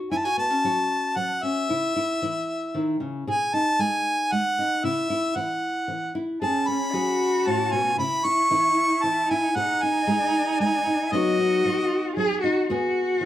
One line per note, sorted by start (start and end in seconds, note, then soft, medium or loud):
0.11 0.59 F#2 medium
0.11 0.25 E4 medium
0.11 0.19 G#5 medium
0.18 0.26 A5 medium
0.25 0.64 F#4 soft
0.25 0.38 G#5 loud
0.37 0.50 B3 soft
0.37 1.18 A5 loud
0.50 1.42 C#4 soft
0.64 1.12 F#3 medium
0.64 1.67 F#4 medium
1.16 1.64 F#3 medium
1.16 1.45 F#5 medium
1.43 1.66 C#4 medium
1.43 3.01 E5 medium
1.69 2.17 C#3 medium
1.69 1.95 E4 medium
1.96 2.22 E4 medium
2.22 2.69 E3 medium
2.22 3.27 E4 medium
2.75 3.00 D#3 medium
3.00 3.27 C#3 medium
3.27 3.74 B2 medium
3.27 3.80 G#4 medium
3.27 3.56 G#5 medium
3.54 4.58 D#4 medium
3.54 3.82 A5 loud
3.79 4.26 G#3 medium
3.79 4.84 G#4 medium
3.79 4.34 G#5 loud
4.32 4.79 G#3 medium
4.32 4.86 F#5 medium
4.59 4.81 D#4 medium
4.84 5.31 C#3 medium
4.84 5.09 E4 medium
4.84 5.38 E5 medium
5.10 5.35 E4 medium
5.36 5.83 E3 medium
5.36 6.14 E4 medium
5.36 6.15 F#5 medium
5.88 6.36 E3 medium
6.15 6.41 E4 medium
6.41 6.89 F#2 medium
6.41 6.94 C#4 medium
6.41 6.94 G#4 medium
6.41 6.69 A5 medium
6.68 7.96 C#4 medium
6.68 7.49 B5 medium
6.93 7.41 F#3 medium
6.93 7.98 F#4 medium
6.93 7.99 G#4 medium
7.46 7.72 A2 medium
7.46 7.74 A5 medium
7.72 7.98 B2 medium
7.72 7.98 G#5 medium
7.99 8.46 C#3 medium
7.99 9.52 E4 medium
7.99 8.24 E4 medium
7.99 8.27 B5 loud
8.25 8.50 E4 medium
8.25 9.04 C#6 loud
8.51 8.98 E3 medium
8.51 9.29 E4 medium
9.03 9.50 E3 medium
9.03 9.32 A5 loud
9.30 9.56 E4 medium
9.30 9.58 G#5 medium
9.56 10.03 B2 medium
9.56 11.15 D#4 loud
9.56 10.07 G#4 medium
9.56 9.84 F#5 medium
9.83 10.85 D#4 medium
9.83 10.60 G#5 loud
10.07 10.54 G#3 medium
10.07 11.09 G#4 medium
10.60 11.07 G#3 medium
10.60 11.14 G#5 loud
10.87 11.09 D#4 medium
11.12 11.59 B2 medium
11.12 11.64 F#3 medium
11.12 12.66 B3 medium
11.12 11.38 D#4 medium
11.12 12.16 F#4 loud
11.12 11.65 F#4 medium
11.12 12.17 D#5 medium
11.65 12.12 F#3 medium
11.65 12.66 F#4 medium
12.17 12.64 F#3 medium
12.17 12.41 G#4 loud
12.42 12.66 D#4 medium
12.42 12.67 F#4 loud
12.68 13.16 E2 medium
12.68 13.25 B3 medium
12.68 13.25 F#4 loud
12.68 13.25 G#4 medium
13.21 13.25 E3 medium